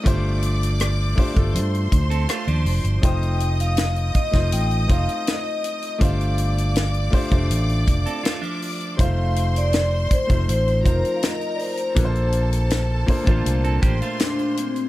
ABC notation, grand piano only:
X:1
M:4/4
L:1/16
Q:1/4=81
K:Gm
V:1 name="Grand piano"
[A,DFGc]4- [A,DFGc] z [A,DFGc] [A,DFGA]6- [A,DFGA] z2 | [A,CEFc]6 z [A,CEFc]3 [A,CEFc]4- [A,CEFc] z | [A,DFGc]4- [A,DFGc] z [A,DFGc] [A,DFGc]6- [A,DFGc] z2 | [G,A,CEFc]6 z [A,CEFc]3 [F,CEFc]4- [F,CEFc] z |
[B,DFA=Bc]4- [_B,DFA=Bc] z [_B,DFAc] [B,,DFAc]6- [B,,DFAc] z2 |]